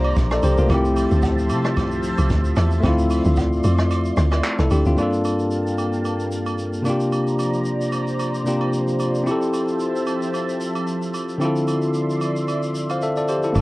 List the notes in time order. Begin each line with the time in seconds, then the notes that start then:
Already playing: C2 F3 A#3 D4 F4 G4 C5 D5 A#5
0.04 high agogo
0.16 A#1, kick, hi-hat pedal, shaker
0.31 A4 D5, cross-stick, shaker
0.43 C2 G4 C5, open hi-hat, high agogo, shaker
0.57 C2 F4 A#4, shaker
0.66 C2 A3 C4 C5 E5 A5, kick, hi-hat pedal, high agogo, shaker
0.72 E4 G4
0.85 shaker
0.96 open hi-hat, high agogo, shaker
1.11 D2, shaker
1.22 kick, hi-hat pedal, low woodblock, shaker
1.38 shaker
1.50 C3, open hi-hat, high agogo, shaker
1.65 cross-stick, shaker
1.77 C2, kick, hi-hat pedal, high agogo, shaker
1.91 shaker
2.03 open hi-hat, shaker
2.18 C2, high agogo, shaker
2.30 D2, kick, hi-hat pedal, shaker
2.45 shaker
2.57 E2, cross-stick, open hi-hat, high agogo, shaker
2.72 shaker
2.81 D2 A3 C4 D5 C6, kick, hi-hat pedal, high agogo, shaker
2.86 E4 F4
2.99 shaker
3.11 open hi-hat, high agogo, shaker
3.25 D2, shaker
3.37 kick, hi-hat pedal, low woodblock, shaker
3.53 shaker
3.64 F2, open hi-hat, high agogo, shaker
3.79 cross-stick, shaker
3.91 hi-hat pedal, high agogo, shaker
4.05 shaker
4.18 D2, cross-stick, open hi-hat, shaker
4.32 cross-stick, high agogo, shaker
4.44 clap, hi-hat pedal, shaker
4.59 C2 E4 A4, cross-stick, shaker
4.71 D2 D4 G4, open hi-hat, high agogo, shaker
4.86 D2 C4 F4, shaker
4.95 G2 A#3 D4 G4 F5 A5, high agogo, shaker
5.01 F4 A4
5.13 shaker
5.25 high agogo, shaker
5.39 shaker
5.51 shaker
5.67 shaker
5.78 high agogo, shaker
5.93 shaker
6.05 high agogo, shaker
6.20 shaker
6.32 shaker
6.47 high agogo, shaker
6.59 shaker
6.74 shaker
6.83 C3 F3 A#3 D4 C5 D5 A#5, high agogo, shaker
6.88 F4 G4
7.00 shaker
7.13 high agogo, shaker
7.28 shaker
7.39 high agogo, shaker
7.54 shaker
7.65 shaker
7.82 shaker
7.93 high agogo, shaker
8.08 shaker
8.20 high agogo, shaker
8.35 shaker
8.45 C3 A#3 D4 F4 G4, shaker
8.61 high agogo
8.73 shaker
8.88 shaker
9.00 high agogo, shaker
9.15 shaker
9.24 C4 E4 E5 A5, high agogo, shaker
9.29 G4 A4
9.42 shaker
9.54 high agogo, shaker
9.68 shaker
9.80 shaker
9.96 shaker
10.07 high agogo, shaker
10.22 shaker
10.34 high agogo, shaker
10.49 shaker
10.61 shaker
10.75 high agogo, shaker
10.87 shaker
11.02 shaker
11.14 high agogo, shaker
11.29 shaker
11.38 D3 C4 E4 D5 E5 C6, high agogo, shaker
11.44 F4 A4
11.56 shaker
11.68 high agogo, shaker
11.82 shaker
11.94 shaker
12.10 shaker
12.21 high agogo, shaker
12.36 shaker
12.48 high agogo, shaker
12.63 shaker
12.75 shaker
12.90 C5 F5, high agogo, shaker
13.02 A4 E5, shaker
13.16 A4 D5, shaker
13.28 G4 C5, high agogo, shaker
13.43 E4 A4, shaker
13.53 G1 A#3 D4 G4 F5, high agogo, shaker
13.57 F4